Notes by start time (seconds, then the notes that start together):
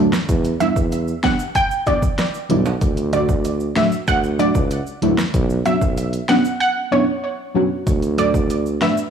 Already playing: D4 A4, impact
0.13 cross-stick, snare, shaker
0.29 E2, kick, closed hi-hat, shaker
0.44 closed hi-hat, shaker
0.60 E3 G3 B3 D4 E4 E5, closed hi-hat, shaker
0.76 E2, kick, shaker
0.92 closed hi-hat, shaker
1.08 shaker
1.23 E3 G3 B3 D4 G4 F#5, kick, cross-stick, snare, closed hi-hat
1.39 shaker
1.55 G5, kick, closed hi-hat, shaker
1.71 shaker
1.86 E3 G3 B3 D4 E4 D5, kick, closed hi-hat, shaker
2.02 kick, shaker
2.18 cross-stick, snare, closed hi-hat, shaker
2.34 shaker
2.49 B1 E3 G3 B3 D4 E4, closed hi-hat
2.66 high timbale, shaker
2.81 D2, kick, closed hi-hat, shaker
2.97 closed hi-hat, shaker
3.12 D3 F#3 A3 D4 F#4 D5, closed hi-hat, shaker
3.29 kick, shaker
3.45 closed hi-hat, shaker
3.60 shaker
3.76 D3 F#3 A3 D4 F#4 E5, cross-stick, snare, closed hi-hat
3.92 shaker
4.08 D2 F#5, kick, closed hi-hat, shaker
4.23 shaker
4.39 D3 F#3 A3 D4 F#4 D5, closed hi-hat, shaker
4.55 C#2, kick, shaker
4.71 closed hi-hat, shaker
4.87 shaker
5.02 D2 D3 F#3 A3 D4 E4, closed hi-hat
5.18 cross-stick, snare, shaker
5.34 B1, kick, closed hi-hat, shaker
5.50 shaker
5.65 F#3 B3 C#4 D4 F#4 E5, closed hi-hat, shaker
5.81 B1, kick, shaker
5.97 closed hi-hat, shaker
6.13 closed hi-hat, shaker
6.28 F#3 B3 C#4 D4 F#4 F#5, cross-stick, snare, closed hi-hat
6.45 shaker
6.60 F#5
6.91 F#3 B3 C#4 D4 E4 C#5
7.54 F#3 B3 C#4 D4 F#4
7.87 D2, kick, closed hi-hat, shaker
8.02 closed hi-hat, shaker
8.18 F#3 A3 D4 F#4 A4 D5, closed hi-hat, shaker
8.34 kick, shaker
8.50 closed hi-hat, shaker
8.66 shaker
8.81 F#3 A3 D4 F#4 B4 E5, cross-stick, snare, closed hi-hat
8.97 shaker